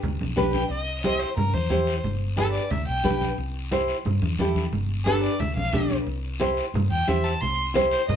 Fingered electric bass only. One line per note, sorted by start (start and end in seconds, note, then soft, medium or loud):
0.04 0.17 D2 medium
0.21 0.34 B1 medium
0.37 0.64 B1 medium
0.70 1.24 C2 medium
1.37 1.50 G2 medium
1.54 1.68 E2 medium
1.72 1.98 E2 medium
2.04 2.58 G1 medium
2.71 2.85 D2 medium
2.88 3.02 B1 medium
3.05 3.32 B1 medium
3.38 3.92 C2 loud
4.05 4.19 G2 loud
4.23 4.36 E2 medium
4.40 4.67 E2 medium
4.73 5.27 G1 loud
5.40 5.53 D2 medium
5.56 5.70 B1 medium
5.73 6.00 B1 medium
6.07 6.61 C2 loud
6.74 6.87 G2 loud
6.91 7.04 E2 medium
7.08 7.35 E2 medium
7.42 7.95 C2 loud
8.09 8.16 G2 medium